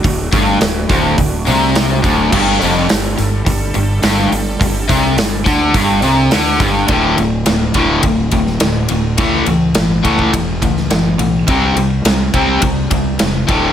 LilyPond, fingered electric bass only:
\new Staff \with { instrumentName = "Fingered electric bass" } { \clef bass \time 4/4 \key d \mixolydian \tempo 4 = 105 d,,8 g,,8 d,,8 d,,8 d,,8 c,4 d,,8 | g,,8 f,,8 g,,8 g,,8 g,,8 g,,8 g,,8 g,,8 | g,,8 c,8 g,,8 d,8 g,,8 c,8 d,8 g,,8 | d,,8 d,,8 d,,8 d,,8 d,,8 d,,8 d,,8 d,,8 |
cis,8 cis,8 g,,8 cis,8 e,,8 cis,8 fis,,8 b,,8 | c,8 c,8 c,8 c,8 c,8 c,8 e,,8 d,,8 | }